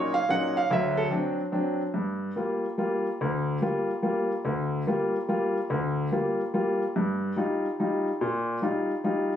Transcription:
Already playing: A#2 F#3 C#4 D#4 C#5
0.14 F5
0.29 A#2 F#3 C#4 D#4 F#5
0.57 F5
0.71 D2 F#3 E5
0.97 A4
1.11 F#3 C4 D4
1.52 F#3 C4 D4
1.94 G2
2.36 G3 A#3 F4
2.78 G3 A#3 F4
3.21 D2
3.62 G3 A#3 F4
4.02 G3 A#3 F4
4.45 D2
4.87 G3 A#3 F4
5.28 G3 A#3 F4
5.70 D2
6.12 G3 A#3 F4
6.54 G3 A#3 F4
6.96 G2
7.36 G3 D#4 F4
7.80 G3 D#4 F4
8.21 A#2
8.62 G3 D#4 F4
9.04 G3 D#4 F4

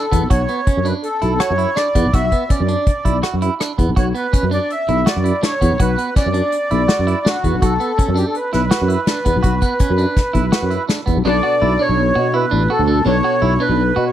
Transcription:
Already playing: A4
0.12 E2 B3, kick, closed hi-hat
0.22 B1
0.30 B1 F#4 C#5, kick, closed hi-hat
0.48 B3, closed hi-hat
0.67 C#4, kick, closed hi-hat
0.77 F#2
0.85 D4 B4, closed hi-hat
1.03 A4, closed hi-hat
1.22 B1 E4, closed hi-hat
1.39 F#4 C#5, cross-stick, closed hi-hat
1.50 F#2
1.58 E4, closed hi-hat
1.76 D4 D5, cross-stick, closed hi-hat
1.95 E2 B3, kick, closed hi-hat
2.05 B1
2.13 B1 F#4 E5, kick, closed hi-hat
2.32 B3, kick, closed hi-hat
2.49 C#4 D5, kick, closed hi-hat
2.60 F#2
2.68 D4, closed hi-hat
2.86 kick, closed hi-hat
3.05 B1 E4, kick, closed hi-hat
3.23 F#4, cross-stick, closed hi-hat
3.33 F#2
3.42 E4, closed hi-hat
3.60 D4, cross-stick, closed hi-hat
3.78 E2 B3, kick, closed hi-hat
3.89 B1
3.96 B1 F#4 C#5, kick, closed hi-hat
4.15 B3 B4, closed hi-hat
4.33 C#4, kick, closed hi-hat
4.43 F#2
4.51 D4 D5, closed hi-hat
4.70 E5, closed hi-hat
4.88 B1 E4, closed hi-hat
5.06 F#4 D5, snare, closed hi-hat
5.16 F#2
5.24 E4, closed hi-hat
5.43 D4 C#5, snare, closed hi-hat
5.61 E2 B3, kick, closed hi-hat
5.72 B1
5.80 B1 F#4 B4, kick, closed hi-hat
5.98 B3, closed hi-hat
6.16 C#4 D5, kick, snare, closed hi-hat
6.26 F#2
6.34 D4, closed hi-hat
6.52 closed hi-hat
6.71 B1 E4, closed hi-hat
6.88 F#4, snare, closed hi-hat
6.99 F#2
7.07 E4, closed hi-hat
7.25 D4 F#4, snare, closed hi-hat
7.44 E2 B3, kick, closed hi-hat
7.54 B1
7.62 B1 F#4 A4, kick, closed hi-hat
7.80 B3, closed hi-hat
7.98 C#4, kick, closed hi-hat
8.08 F#2
8.15 D4 G4, closed hi-hat
8.26 A4
8.35 B4, closed hi-hat
8.53 B1 E4 B4, snare, closed hi-hat
8.71 F#4, snare, closed hi-hat
8.81 F#2
8.88 E4, closed hi-hat
9.07 D4, snare, closed hi-hat
9.25 E2 B3, kick, closed hi-hat
9.36 B1
9.43 B1 F#4, kick, closed hi-hat
9.61 B3, kick, closed hi-hat
9.79 C#4, kick, closed hi-hat
9.90 F#2
9.98 D4, closed hi-hat
10.17 kick, snare, closed hi-hat
10.33 B1 E4, kick, closed hi-hat
10.52 F#4, snare, closed hi-hat
10.62 F#2
10.70 E4, closed hi-hat
10.89 D4, snare, closed hi-hat
11.06 E2 B3, kick, closed hi-hat
11.16 B1
11.25 B1 B2 B3 D4 A4 D5
11.43 F#4
11.62 B1 E4
11.79 D4 C#5
11.89 B1
12.15 B2 F#4
12.34 E4 B4
12.51 A1 D4
12.70 F#4 A4
12.79 D2
12.88 D4
13.05 B1 B2 B3 D4 A4 C#5
13.24 F#4
13.42 B1 E4
13.60 D4 B4
13.69 B1
13.96 B2 F#4
14.07 C#5

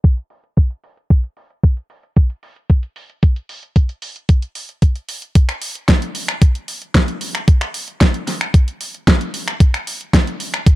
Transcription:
0.04 kick, closed hi-hat
0.17 closed hi-hat
0.30 open hi-hat
0.44 closed hi-hat
0.57 kick, closed hi-hat
0.70 closed hi-hat
0.84 open hi-hat
0.97 closed hi-hat
1.10 kick, closed hi-hat
1.24 closed hi-hat
1.37 open hi-hat
1.50 closed hi-hat
1.63 kick, closed hi-hat
1.77 closed hi-hat
1.90 open hi-hat
2.03 closed hi-hat
2.16 kick, closed hi-hat
2.30 closed hi-hat
2.43 open hi-hat
2.56 closed hi-hat
2.70 kick, closed hi-hat
2.83 closed hi-hat
2.96 open hi-hat
3.10 closed hi-hat
3.23 kick, closed hi-hat
3.36 closed hi-hat
3.49 open hi-hat
3.63 closed hi-hat
3.76 kick, closed hi-hat
3.89 closed hi-hat
4.02 open hi-hat
4.16 closed hi-hat
4.29 kick, closed hi-hat
4.42 closed hi-hat
4.55 open hi-hat
4.69 closed hi-hat
4.82 kick, closed hi-hat
4.96 closed hi-hat
5.09 open hi-hat
5.22 closed hi-hat
5.35 kick, closed hi-hat
5.49 finger snap, closed hi-hat
5.62 open hi-hat
5.75 closed hi-hat
5.88 kick, snare, closed hi-hat
6.02 closed hi-hat
6.15 open hi-hat
6.28 finger snap, closed hi-hat
6.42 kick, closed hi-hat
6.55 closed hi-hat
6.68 open hi-hat
6.82 closed hi-hat
6.95 kick, snare, closed hi-hat
7.08 closed hi-hat
7.21 open hi-hat
7.35 finger snap, closed hi-hat
7.48 kick, closed hi-hat
7.61 finger snap, closed hi-hat
7.74 open hi-hat
7.88 closed hi-hat
8.01 kick, snare, closed hi-hat
8.14 closed hi-hat
8.27 snare, open hi-hat
8.41 finger snap, closed hi-hat
8.54 kick, closed hi-hat
8.68 closed hi-hat
8.81 open hi-hat
8.94 closed hi-hat
9.07 kick, snare, closed hi-hat
9.21 closed hi-hat
9.34 open hi-hat
9.48 finger snap, closed hi-hat
9.60 kick, closed hi-hat
9.74 finger snap, closed hi-hat
9.87 open hi-hat
10.01 closed hi-hat
10.13 kick, snare, closed hi-hat
10.27 closed hi-hat
10.40 open hi-hat
10.54 finger snap, closed hi-hat
10.66 kick, closed hi-hat

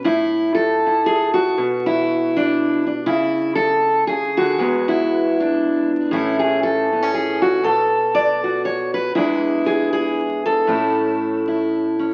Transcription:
0.04 A2 E4
0.55 A4
0.87 E4
1.06 G#4
1.34 F#4
1.58 B2
1.86 E4
2.37 D4
2.87 D4
3.06 C#3 E4
3.55 A4
4.07 C#3 G#4
4.37 D3 F#4
4.58 E2 G#3 B3
4.88 E4
5.40 D4
6.11 A2 E3 A3 C#4 E4
6.39 G#4
6.63 A4
6.93 B3
7.02 C#4
7.14 G#4
7.42 F#4
7.64 B2 A4
8.15 D5
8.44 F#4
8.65 C#5
8.94 B4
9.15 E2 G#3 D4 E4
9.66 G#4
9.93 G#4
10.46 A4
10.67 A2 A3 C#4 E4
11.48 E4
11.99 C#4

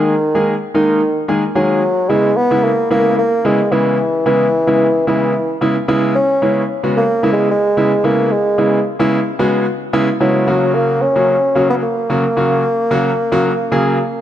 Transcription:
Already playing: D#3 G#3 A#3 G#4
0.35 D#3 G#3 A#3 G#4
0.74 D#3 G#3 A#3 D#4
1.28 D#3 G#3 A#3 G#4
1.55 D#3 F#3 G#3 A#3 G#4
2.09 C#3 G#3 B3 E4
2.37 B3
2.51 C#3 G#3 B3 E4
2.64 A#3
2.90 C#3 G#3 A#3 B3 E4
3.18 A#3
3.45 C#3 G#3 B3 E4
3.71 C#3 E3 G#3 B3 E4
4.26 C#3 E3 G#3 B3 E4
4.67 C#3 G#3 B3 E4
5.07 C#3 E3 G#3 B3 E4
5.61 C#3 G#3 B3 E4
5.88 C#3 G#3 B3 E4
6.15 C#4
6.42 C#3 G#3 B3 E4
6.83 C#3 G#3 B3 F#4
6.97 A#3
7.23 C#3 G#3 B3 E4
7.33 G#3
7.51 G#3
7.77 C#3 G#3 B3 E4
8.04 C#3 G#3 A#3 B3 E4
8.31 G#3
8.58 C#3 G#3 B3 E4
8.99 C#3 G#3 B3 E4
9.39 C#3 G#3 B3 F#4
9.93 C#3 G#3 B3 E4
10.20 C#3 F#3 G#3 B3 E4
10.47 C#3 F#3 A#3 F#4
10.75 A#3
11.02 C#4
11.16 C#3 F#3 A#3 F#4
11.55 C#3 F#3 A#3 F#4
11.70 B3
11.83 A#3
12.10 C#3 F#3 A#3 F#4
12.37 C#3 F#3 A#3 F#4
12.91 C#3 F#3 A#3 F#4
13.32 C#3 F#3 A#3 F#4
13.72 C#3 F#3 A#3 G#4

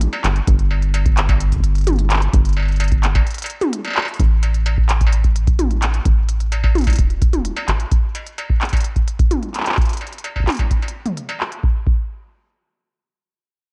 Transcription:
0.01 closed hi-hat
0.13 closed hi-hat, struck metal
0.24 G1, clap, closed hi-hat
0.36 closed hi-hat
0.47 G1, kick, closed hi-hat
0.59 closed hi-hat
0.71 struck metal
0.82 closed hi-hat
0.94 closed hi-hat, struck metal
1.06 kick, closed hi-hat
1.17 clap, closed hi-hat
1.29 kick, closed hi-hat, struck metal
1.40 closed hi-hat
1.52 kick, closed hi-hat, shaker
1.56 kick
1.60 kick, closed hi-hat
1.75 closed hi-hat
1.78 closed hi-hat
1.81 closed hi-hat
1.84 closed hi-hat
1.87 closed hi-hat, high tom
1.90 closed hi-hat
1.93 closed hi-hat
1.96 closed hi-hat
1.99 closed hi-hat
2.10 clap, closed hi-hat
2.13 clap
2.16 clap
2.19 clap, closed hi-hat
2.33 G1, kick, closed hi-hat
2.45 closed hi-hat
2.49 closed hi-hat
2.53 closed hi-hat, struck metal
2.60 struck metal
2.62 struck metal
2.65 closed hi-hat, struck metal
2.68 struck metal
2.71 closed hi-hat, struck metal
2.74 closed hi-hat, struck metal
2.77 closed hi-hat, struck metal
2.80 closed hi-hat, struck metal
2.88 kick, closed hi-hat
2.92 closed hi-hat
3.03 clap, closed hi-hat
3.15 kick, closed hi-hat, struck metal
3.26 closed hi-hat
3.30 closed hi-hat
3.34 closed hi-hat
3.38 closed hi-hat
3.42 closed hi-hat, struck metal
3.46 closed hi-hat
3.50 closed hi-hat
3.61 closed hi-hat, high tom, shaker
3.73 closed hi-hat
3.85 closed hi-hat, struck metal
3.88 struck metal
3.90 struck metal
3.93 clap, struck metal
3.96 struck metal
3.99 struck metal
4.02 struck metal
4.05 struck metal, shaker
4.14 closed hi-hat, shaker
4.19 A1, kick, closed hi-hat, shaker
4.43 closed hi-hat, struck metal
4.54 closed hi-hat
4.66 closed hi-hat, struck metal
4.78 kick
4.89 clap, closed hi-hat
5.01 kick, closed hi-hat
5.07 struck metal
5.13 closed hi-hat
5.24 kick, closed hi-hat
5.36 closed hi-hat
5.47 kick, closed hi-hat
5.59 closed hi-hat, high tom
5.71 closed hi-hat
5.82 clap, closed hi-hat
5.94 closed hi-hat
6.06 A1, kick, closed hi-hat
6.29 closed hi-hat
6.40 closed hi-hat
6.52 closed hi-hat, struck metal
6.64 kick, struck metal
6.75 closed hi-hat, high tom
6.78 closed hi-hat
6.81 closed hi-hat
6.84 kick, closed hi-hat
6.87 closed hi-hat, struck metal
6.90 closed hi-hat
6.93 closed hi-hat
6.96 E1, kick, closed hi-hat
6.99 closed hi-hat
7.10 closed hi-hat
7.22 kick, closed hi-hat
7.33 closed hi-hat, high tom
7.45 closed hi-hat
7.57 closed hi-hat, struck metal
7.68 A1, clap, closed hi-hat
7.80 closed hi-hat
7.92 kick, closed hi-hat
8.15 closed hi-hat, struck metal
8.26 closed hi-hat
8.38 closed hi-hat, struck metal
8.50 kick
8.61 clap, closed hi-hat
8.65 closed hi-hat
8.69 kick, closed hi-hat
8.73 closed hi-hat, struck metal
8.77 closed hi-hat
8.81 closed hi-hat
8.85 closed hi-hat
8.96 kick, closed hi-hat
9.08 closed hi-hat
9.19 kick, closed hi-hat
9.31 closed hi-hat, high tom
9.43 closed hi-hat
9.54 clap, closed hi-hat
9.57 clap
9.60 clap
9.63 clap
9.66 clap, closed hi-hat
9.69 clap
9.72 clap
9.75 kick, clap, closed hi-hat
9.81 closed hi-hat
9.85 closed hi-hat
9.89 closed hi-hat
9.93 closed hi-hat
9.97 closed hi-hat
10.01 closed hi-hat, struck metal
10.07 closed hi-hat
10.12 closed hi-hat
10.18 closed hi-hat
10.24 closed hi-hat, struck metal
10.36 kick, struck metal
10.40 kick
10.44 kick, clap, closed hi-hat, high tom
10.50 closed hi-hat
10.52 closed hi-hat
10.54 closed hi-hat
10.57 kick, closed hi-hat
10.59 closed hi-hat, struck metal
10.71 kick, closed hi-hat
10.82 closed hi-hat, struck metal
10.88 closed hi-hat
11.06 closed hi-hat, high tom
11.17 closed hi-hat
11.29 closed hi-hat, struck metal
11.40 clap
11.52 closed hi-hat
11.64 kick
11.87 kick

